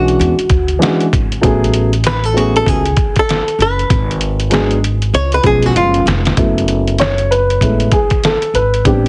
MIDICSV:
0, 0, Header, 1, 6, 480
1, 0, Start_track
1, 0, Key_signature, 3, "minor"
1, 0, Tempo, 618557
1, 1110, Time_signature, 4, 2, 24, 8
1, 7049, End_track
2, 0, Start_track
2, 0, Title_t, "Hollow-body jazz guitar"
2, 0, Program_c, 0, 26
2, 0, Note_on_c, 0, 66, 80
2, 609, Note_off_c, 0, 66, 0
2, 1604, Note_on_c, 0, 71, 101
2, 1748, Note_off_c, 0, 71, 0
2, 1748, Note_on_c, 0, 69, 86
2, 1837, Note_off_c, 0, 69, 0
2, 1837, Note_on_c, 0, 66, 92
2, 1981, Note_off_c, 0, 66, 0
2, 1990, Note_on_c, 0, 69, 94
2, 2084, Note_off_c, 0, 69, 0
2, 2084, Note_on_c, 0, 68, 98
2, 2474, Note_off_c, 0, 68, 0
2, 2477, Note_on_c, 0, 69, 98
2, 2807, Note_off_c, 0, 69, 0
2, 2810, Note_on_c, 0, 71, 101
2, 3489, Note_off_c, 0, 71, 0
2, 3994, Note_on_c, 0, 73, 108
2, 4142, Note_off_c, 0, 73, 0
2, 4145, Note_on_c, 0, 71, 92
2, 4228, Note_off_c, 0, 71, 0
2, 4240, Note_on_c, 0, 68, 96
2, 4390, Note_off_c, 0, 68, 0
2, 4390, Note_on_c, 0, 66, 90
2, 4472, Note_off_c, 0, 66, 0
2, 4475, Note_on_c, 0, 65, 77
2, 4696, Note_off_c, 0, 65, 0
2, 7049, End_track
3, 0, Start_track
3, 0, Title_t, "Grand piano"
3, 0, Program_c, 1, 0
3, 0, Note_on_c, 1, 50, 59
3, 0, Note_on_c, 1, 52, 73
3, 0, Note_on_c, 1, 56, 61
3, 0, Note_on_c, 1, 57, 56
3, 0, Note_on_c, 1, 59, 57
3, 0, Note_on_c, 1, 61, 64
3, 0, Note_on_c, 1, 62, 65
3, 0, Note_on_c, 1, 66, 80
3, 108, Note_off_c, 1, 50, 0
3, 112, Note_off_c, 1, 57, 0
3, 115, Note_off_c, 1, 59, 0
3, 259, Note_off_c, 1, 52, 0
3, 264, Note_off_c, 1, 56, 0
3, 266, Note_off_c, 1, 61, 0
3, 270, Note_off_c, 1, 62, 0
3, 274, Note_off_c, 1, 66, 0
3, 612, Note_on_c, 1, 52, 82
3, 619, Note_on_c, 1, 56, 70
3, 624, Note_on_c, 1, 61, 74
3, 629, Note_on_c, 1, 62, 70
3, 638, Note_on_c, 1, 66, 88
3, 805, Note_off_c, 1, 52, 0
3, 809, Note_off_c, 1, 56, 0
3, 811, Note_off_c, 1, 61, 0
3, 814, Note_off_c, 1, 62, 0
3, 818, Note_off_c, 1, 66, 0
3, 1098, Note_on_c, 1, 54, 84
3, 1101, Note_on_c, 1, 57, 80
3, 1110, Note_on_c, 1, 59, 75
3, 1114, Note_on_c, 1, 61, 77
3, 1122, Note_on_c, 1, 68, 93
3, 1462, Note_off_c, 1, 54, 0
3, 1463, Note_off_c, 1, 57, 0
3, 1468, Note_off_c, 1, 59, 0
3, 1470, Note_off_c, 1, 61, 0
3, 1474, Note_off_c, 1, 68, 0
3, 1810, Note_on_c, 1, 54, 77
3, 1817, Note_on_c, 1, 57, 73
3, 1826, Note_on_c, 1, 59, 72
3, 1830, Note_on_c, 1, 61, 70
3, 1837, Note_on_c, 1, 68, 84
3, 2178, Note_off_c, 1, 54, 0
3, 2181, Note_off_c, 1, 57, 0
3, 2186, Note_off_c, 1, 59, 0
3, 2188, Note_off_c, 1, 61, 0
3, 2191, Note_off_c, 1, 68, 0
3, 3493, Note_on_c, 1, 54, 81
3, 3499, Note_on_c, 1, 56, 74
3, 3507, Note_on_c, 1, 59, 75
3, 3515, Note_on_c, 1, 62, 75
3, 3517, Note_on_c, 1, 68, 93
3, 3686, Note_off_c, 1, 54, 0
3, 3689, Note_off_c, 1, 56, 0
3, 3693, Note_off_c, 1, 59, 0
3, 3697, Note_off_c, 1, 62, 0
3, 3698, Note_off_c, 1, 68, 0
3, 4211, Note_on_c, 1, 53, 70
3, 4217, Note_on_c, 1, 56, 64
3, 4225, Note_on_c, 1, 59, 62
3, 4231, Note_on_c, 1, 61, 64
3, 4237, Note_on_c, 1, 68, 72
3, 4903, Note_off_c, 1, 53, 0
3, 4906, Note_off_c, 1, 56, 0
3, 4910, Note_off_c, 1, 59, 0
3, 4913, Note_off_c, 1, 61, 0
3, 4916, Note_off_c, 1, 68, 0
3, 4946, Note_on_c, 1, 54, 52
3, 4950, Note_on_c, 1, 57, 48
3, 4954, Note_on_c, 1, 59, 46
3, 4955, Note_on_c, 1, 64, 60
3, 5428, Note_on_c, 1, 73, 97
3, 5671, Note_on_c, 1, 71, 97
3, 5676, Note_off_c, 1, 73, 0
3, 5901, Note_off_c, 1, 57, 0
3, 5904, Note_off_c, 1, 59, 0
3, 5905, Note_off_c, 1, 64, 0
3, 5909, Note_on_c, 1, 56, 46
3, 5913, Note_on_c, 1, 57, 45
3, 5916, Note_on_c, 1, 59, 44
3, 5916, Note_on_c, 1, 64, 49
3, 6125, Note_off_c, 1, 56, 0
3, 6127, Note_off_c, 1, 57, 0
3, 6129, Note_off_c, 1, 59, 0
3, 6129, Note_off_c, 1, 64, 0
3, 6155, Note_on_c, 1, 68, 85
3, 6165, Note_off_c, 1, 71, 0
3, 6399, Note_off_c, 1, 68, 0
3, 6401, Note_on_c, 1, 69, 86
3, 6634, Note_on_c, 1, 71, 93
3, 6642, Note_off_c, 1, 69, 0
3, 6837, Note_off_c, 1, 54, 0
3, 6870, Note_on_c, 1, 55, 53
3, 6872, Note_on_c, 1, 59, 48
3, 6877, Note_on_c, 1, 60, 49
3, 6879, Note_off_c, 1, 71, 0
3, 6879, Note_on_c, 1, 62, 59
3, 6881, Note_on_c, 1, 67, 84
3, 7049, Note_off_c, 1, 55, 0
3, 7049, Note_off_c, 1, 59, 0
3, 7049, Note_off_c, 1, 60, 0
3, 7049, Note_off_c, 1, 62, 0
3, 7049, Note_off_c, 1, 67, 0
3, 7049, End_track
4, 0, Start_track
4, 0, Title_t, "Upright bass"
4, 0, Program_c, 2, 32
4, 0, Note_on_c, 2, 35, 101
4, 120, Note_off_c, 2, 35, 0
4, 151, Note_on_c, 2, 40, 101
4, 272, Note_off_c, 2, 40, 0
4, 386, Note_on_c, 2, 38, 88
4, 586, Note_off_c, 2, 38, 0
4, 876, Note_on_c, 2, 32, 74
4, 1072, Note_off_c, 2, 32, 0
4, 1112, Note_on_c, 2, 33, 103
4, 2040, Note_off_c, 2, 33, 0
4, 2068, Note_on_c, 2, 37, 87
4, 2267, Note_off_c, 2, 37, 0
4, 2783, Note_on_c, 2, 30, 90
4, 2984, Note_off_c, 2, 30, 0
4, 3028, Note_on_c, 2, 32, 106
4, 3958, Note_off_c, 2, 32, 0
4, 3985, Note_on_c, 2, 37, 96
4, 4185, Note_off_c, 2, 37, 0
4, 4221, Note_on_c, 2, 35, 90
4, 4423, Note_off_c, 2, 35, 0
4, 4466, Note_on_c, 2, 30, 97
4, 4666, Note_off_c, 2, 30, 0
4, 4700, Note_on_c, 2, 29, 93
4, 4902, Note_off_c, 2, 29, 0
4, 4944, Note_on_c, 2, 30, 101
4, 5876, Note_off_c, 2, 30, 0
4, 5906, Note_on_c, 2, 33, 88
4, 6106, Note_off_c, 2, 33, 0
4, 6625, Note_on_c, 2, 32, 77
4, 6825, Note_off_c, 2, 32, 0
4, 6868, Note_on_c, 2, 33, 103
4, 7049, Note_off_c, 2, 33, 0
4, 7049, End_track
5, 0, Start_track
5, 0, Title_t, "Muted upright bass strokes"
5, 300, Note_on_c, 9, 29, 47
5, 377, Note_off_c, 9, 29, 0
5, 7049, End_track
6, 0, Start_track
6, 0, Title_t, "Drums"
6, 64, Note_on_c, 9, 42, 47
6, 141, Note_off_c, 9, 42, 0
6, 162, Note_on_c, 9, 42, 80
6, 240, Note_off_c, 9, 42, 0
6, 300, Note_on_c, 9, 42, 52
6, 378, Note_off_c, 9, 42, 0
6, 384, Note_on_c, 9, 42, 69
6, 386, Note_on_c, 9, 36, 105
6, 461, Note_off_c, 9, 42, 0
6, 464, Note_off_c, 9, 36, 0
6, 530, Note_on_c, 9, 42, 48
6, 607, Note_off_c, 9, 42, 0
6, 636, Note_on_c, 9, 42, 88
6, 646, Note_on_c, 9, 38, 110
6, 714, Note_off_c, 9, 42, 0
6, 724, Note_off_c, 9, 38, 0
6, 780, Note_on_c, 9, 42, 48
6, 857, Note_off_c, 9, 42, 0
6, 877, Note_on_c, 9, 36, 109
6, 880, Note_on_c, 9, 42, 70
6, 954, Note_off_c, 9, 36, 0
6, 958, Note_off_c, 9, 42, 0
6, 1024, Note_on_c, 9, 42, 46
6, 1102, Note_off_c, 9, 42, 0
6, 1112, Note_on_c, 9, 36, 115
6, 1113, Note_on_c, 9, 42, 98
6, 1189, Note_off_c, 9, 36, 0
6, 1191, Note_off_c, 9, 42, 0
6, 1274, Note_on_c, 9, 42, 48
6, 1347, Note_off_c, 9, 42, 0
6, 1347, Note_on_c, 9, 42, 78
6, 1425, Note_off_c, 9, 42, 0
6, 1498, Note_on_c, 9, 42, 57
6, 1576, Note_off_c, 9, 42, 0
6, 1582, Note_on_c, 9, 42, 92
6, 1603, Note_on_c, 9, 38, 101
6, 1659, Note_off_c, 9, 42, 0
6, 1680, Note_off_c, 9, 38, 0
6, 1736, Note_on_c, 9, 42, 54
6, 1813, Note_off_c, 9, 42, 0
6, 1844, Note_on_c, 9, 42, 82
6, 1921, Note_off_c, 9, 42, 0
6, 1985, Note_on_c, 9, 42, 53
6, 2063, Note_off_c, 9, 42, 0
6, 2068, Note_on_c, 9, 36, 86
6, 2080, Note_on_c, 9, 42, 85
6, 2145, Note_off_c, 9, 36, 0
6, 2157, Note_off_c, 9, 42, 0
6, 2216, Note_on_c, 9, 42, 55
6, 2293, Note_off_c, 9, 42, 0
6, 2301, Note_on_c, 9, 42, 70
6, 2304, Note_on_c, 9, 36, 108
6, 2379, Note_off_c, 9, 42, 0
6, 2382, Note_off_c, 9, 36, 0
6, 2449, Note_on_c, 9, 42, 48
6, 2455, Note_on_c, 9, 36, 88
6, 2527, Note_off_c, 9, 42, 0
6, 2533, Note_off_c, 9, 36, 0
6, 2554, Note_on_c, 9, 42, 85
6, 2564, Note_on_c, 9, 38, 113
6, 2632, Note_off_c, 9, 42, 0
6, 2642, Note_off_c, 9, 38, 0
6, 2700, Note_on_c, 9, 42, 50
6, 2778, Note_off_c, 9, 42, 0
6, 2797, Note_on_c, 9, 42, 69
6, 2875, Note_off_c, 9, 42, 0
6, 2943, Note_on_c, 9, 42, 46
6, 3021, Note_off_c, 9, 42, 0
6, 3027, Note_on_c, 9, 36, 110
6, 3028, Note_on_c, 9, 42, 106
6, 3105, Note_off_c, 9, 36, 0
6, 3106, Note_off_c, 9, 42, 0
6, 3189, Note_on_c, 9, 42, 51
6, 3265, Note_off_c, 9, 42, 0
6, 3265, Note_on_c, 9, 42, 78
6, 3343, Note_off_c, 9, 42, 0
6, 3412, Note_on_c, 9, 42, 57
6, 3489, Note_off_c, 9, 42, 0
6, 3499, Note_on_c, 9, 42, 90
6, 3520, Note_on_c, 9, 38, 102
6, 3577, Note_off_c, 9, 42, 0
6, 3598, Note_off_c, 9, 38, 0
6, 3653, Note_on_c, 9, 42, 52
6, 3730, Note_off_c, 9, 42, 0
6, 3757, Note_on_c, 9, 42, 79
6, 3835, Note_off_c, 9, 42, 0
6, 3895, Note_on_c, 9, 42, 52
6, 3973, Note_off_c, 9, 42, 0
6, 3992, Note_on_c, 9, 42, 83
6, 4069, Note_off_c, 9, 42, 0
6, 4128, Note_on_c, 9, 42, 52
6, 4206, Note_off_c, 9, 42, 0
6, 4218, Note_on_c, 9, 42, 71
6, 4220, Note_on_c, 9, 36, 107
6, 4295, Note_off_c, 9, 42, 0
6, 4298, Note_off_c, 9, 36, 0
6, 4365, Note_on_c, 9, 42, 50
6, 4393, Note_on_c, 9, 38, 33
6, 4443, Note_off_c, 9, 42, 0
6, 4470, Note_off_c, 9, 38, 0
6, 4470, Note_on_c, 9, 42, 88
6, 4547, Note_off_c, 9, 42, 0
6, 4610, Note_on_c, 9, 42, 51
6, 4688, Note_off_c, 9, 42, 0
6, 4710, Note_on_c, 9, 42, 73
6, 4718, Note_on_c, 9, 38, 96
6, 4788, Note_off_c, 9, 42, 0
6, 4795, Note_off_c, 9, 38, 0
6, 4853, Note_on_c, 9, 42, 49
6, 4864, Note_on_c, 9, 38, 91
6, 4931, Note_off_c, 9, 42, 0
6, 4941, Note_off_c, 9, 38, 0
6, 4944, Note_on_c, 9, 42, 100
6, 4945, Note_on_c, 9, 36, 111
6, 5021, Note_off_c, 9, 42, 0
6, 5023, Note_off_c, 9, 36, 0
6, 5107, Note_on_c, 9, 42, 48
6, 5184, Note_off_c, 9, 42, 0
6, 5184, Note_on_c, 9, 42, 75
6, 5261, Note_off_c, 9, 42, 0
6, 5335, Note_on_c, 9, 42, 51
6, 5413, Note_off_c, 9, 42, 0
6, 5420, Note_on_c, 9, 42, 87
6, 5441, Note_on_c, 9, 38, 96
6, 5497, Note_off_c, 9, 42, 0
6, 5519, Note_off_c, 9, 38, 0
6, 5573, Note_on_c, 9, 42, 53
6, 5651, Note_off_c, 9, 42, 0
6, 5680, Note_on_c, 9, 42, 78
6, 5758, Note_off_c, 9, 42, 0
6, 5822, Note_on_c, 9, 42, 51
6, 5900, Note_off_c, 9, 42, 0
6, 5906, Note_on_c, 9, 36, 82
6, 5914, Note_on_c, 9, 42, 79
6, 5984, Note_off_c, 9, 36, 0
6, 5992, Note_off_c, 9, 42, 0
6, 6053, Note_on_c, 9, 42, 51
6, 6130, Note_off_c, 9, 42, 0
6, 6142, Note_on_c, 9, 42, 74
6, 6144, Note_on_c, 9, 36, 100
6, 6220, Note_off_c, 9, 42, 0
6, 6221, Note_off_c, 9, 36, 0
6, 6288, Note_on_c, 9, 42, 44
6, 6294, Note_on_c, 9, 36, 87
6, 6365, Note_off_c, 9, 42, 0
6, 6372, Note_off_c, 9, 36, 0
6, 6391, Note_on_c, 9, 42, 86
6, 6401, Note_on_c, 9, 38, 110
6, 6469, Note_off_c, 9, 42, 0
6, 6478, Note_off_c, 9, 38, 0
6, 6535, Note_on_c, 9, 42, 50
6, 6612, Note_off_c, 9, 42, 0
6, 6633, Note_on_c, 9, 42, 73
6, 6710, Note_off_c, 9, 42, 0
6, 6781, Note_on_c, 9, 42, 49
6, 6858, Note_off_c, 9, 42, 0
6, 6869, Note_on_c, 9, 36, 115
6, 6870, Note_on_c, 9, 42, 100
6, 6947, Note_off_c, 9, 36, 0
6, 6948, Note_off_c, 9, 42, 0
6, 7049, End_track
0, 0, End_of_file